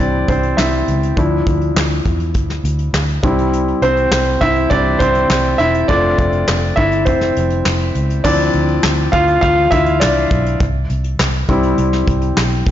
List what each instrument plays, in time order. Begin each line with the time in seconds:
Already playing: grand piano G3 C4 D4 E4 C5 D5
0.00 fingered electric bass C2
0.28 fingered electric bass C2, grand piano C4 C5, kick, closed hi-hat
0.43 closed hi-hat
0.57 fingered electric bass C2, grand piano E4 E5, snare, clap
0.73 closed hi-hat
0.88 fingered electric bass C#2, closed hi-hat
1.03 closed hi-hat
1.17 fingered electric bass D2, grand piano F3 D4 E4, kick, closed hi-hat
1.47 fingered electric bass D2, kick, closed hi-hat
1.61 closed hi-hat
1.76 fingered electric bass D2, snare, clap
1.91 closed hi-hat
2.06 fingered electric bass E2, kick, closed hi-hat
2.20 closed hi-hat
2.34 fingered electric bass D2, kick, closed hi-hat
2.50 snare, closed hi-hat
2.64 fingered electric bass D2, closed hi-hat
2.79 closed hi-hat
2.93 fingered electric bass D2, snare, clap
3.09 closed hi-hat
3.23 fingered electric bass C2, grand piano G3 C4 E4, kick, closed hi-hat
3.39 closed hi-hat
3.53 closed hi-hat
3.68 closed hi-hat
3.82 fingered electric bass C2, grand piano C4 C5, closed hi-hat
3.97 closed hi-hat
4.11 fingered electric bass C2, snare, clap
4.41 fingered electric bass C2, grand piano E4 E5, kick, closed hi-hat
4.56 closed hi-hat
4.70 fingered electric bass C2, grand piano G3 C4 D4 E4 D5, kick, closed hi-hat
4.99 fingered electric bass C2, grand piano C4 C5, kick, closed hi-hat
5.15 closed hi-hat
5.30 fingered electric bass C2, snare, clap
5.45 closed hi-hat
5.58 fingered electric bass E1, grand piano E4 E5, closed hi-hat
5.74 closed hi-hat
5.88 fingered electric bass F1, grand piano A3 C4 D4 F4 D5, kick, closed hi-hat
6.18 fingered electric bass F1, kick, closed hi-hat
6.33 closed hi-hat
6.48 fingered electric bass F1, snare, clap
6.76 fingered electric bass G1, grand piano E4 E5, kick, closed hi-hat
6.92 closed hi-hat
7.05 fingered electric bass F1, grand piano C4 C5, kick, closed hi-hat
7.21 snare
7.36 fingered electric bass F1, closed hi-hat
7.50 closed hi-hat
7.65 fingered electric bass F1, snare, clap
7.80 closed hi-hat
7.95 fingered electric bass C#2, closed hi-hat
8.10 closed hi-hat
8.24 fingered electric bass D2, grand piano F3 C4 D4 E4 D5, kick, crash
8.39 closed hi-hat
8.53 fingered electric bass D2, closed hi-hat
8.68 closed hi-hat
8.83 fingered electric bass D2, snare, clap
8.99 closed hi-hat
9.12 fingered electric bass D2, grand piano F4 F5, kick, closed hi-hat
9.28 closed hi-hat
9.41 fingered electric bass D2, grand piano F4 F5, kick, closed hi-hat
9.71 fingered electric bass D2, grand piano E4 E5, kick, closed hi-hat
9.86 closed hi-hat
10.00 fingered electric bass C2, grand piano D4 D5, snare, clap
10.31 fingered electric bass B1, kick, closed hi-hat
10.46 closed hi-hat
10.60 fingered electric bass C2, kick, closed hi-hat
10.90 fingered electric bass C2, closed hi-hat
11.04 closed hi-hat
11.19 fingered electric bass C2, snare, clap
11.49 fingered electric bass C2, grand piano G3 C4 E4, kick, closed hi-hat
11.63 closed hi-hat
11.78 fingered electric bass C2, closed hi-hat
11.93 snare, closed hi-hat
12.08 fingered electric bass C2, kick, closed hi-hat
12.22 closed hi-hat
12.37 fingered electric bass B1, snare, clap
12.52 closed hi-hat
12.66 fingered electric bass E1, kick, closed hi-hat